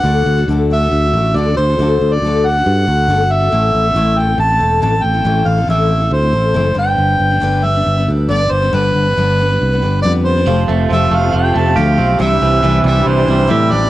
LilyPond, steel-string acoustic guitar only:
\new Staff \with { instrumentName = "Steel-string acoustic guitar" } { \time 4/4 \key g \mixolydian \tempo 4 = 138 <d a d' fis' a'>8. <d' fis' a'>16 <d a d' fis' a'>8 <a d' fis' a'>16 <d' fis' a'>8 <d' fis' a'>16 <a d' fis' a'>8 <d a d' fis' a'>16 <d' fis' a'>8 <d' fis' a'>16 | <d a d' fis' a'>8. <d' fis' a'>16 <d a d' fis' a'>8 <a d' fis' a'>16 <d' fis' a'>8 <d' fis' a'>16 <a d' fis' a'>8 <d a d' fis' a'>16 <d' fis' a'>8 <d' fis' a'>16 | <a, e a c' e' a'>8. <a c' e' a'>16 <a, e a c' e' a'>8 <a c' e' a'>16 <a c' e' a'>8 <a c' e' a'>16 <a c' e' a'>8 <a, e a c' e' a'>16 <a c' e' a'>8 <a c' e' a'>16 | <a, e a c' e' a'>8. <a c' e' a'>16 <a, e a c' e' a'>8 <a c' e' a'>16 <a c' e' a'>8 <a c' e' a'>16 <a c' e' a'>8 <a, e a c' e' a'>16 <a c' e' a'>16 <g, d g b d' b'>8~ |
<g, d g b d' b'>8. <g b d' b'>16 <g, d g b d' b'>8 <g b d' b'>16 <g b d' b'>8 <g b d' b'>16 <g b d' b'>8 <g, d g b d' b'>16 <g b d' b'>8 <g b d' b'>16 | <g, d g b d' b'>8. <g b d' b'>16 <g, d g b d' b'>8 <g b d' b'>16 <g b d' b'>8 <g b d' b'>16 <g b d' b'>8 <g, d g b d' b'>8. <g b d' b'>16 | <f a c' f' g'>16 <c' f' g'>16 <a c' f' g'>8 <f a c' f' g'>8 <a c' f' g'>16 <c' f' g'>8 <c' f' g'>16 <a c' f' g'>16 <c' f' g'>16 <f a c' f' g'>8 <a c' f' g'>8 | <c e g c' d' g'>16 <g c' d' g'>16 <g c' d' g'>8 <c e g c' d' g'>8 <g c' d' g'>16 <g c' d' g'>8 <g c' d' g'>16 <g c' d' g'>16 <g c' d' g'>16 <c e g c' d' g'>8 <g c' d' g'>16 <g c' d' g'>16 | }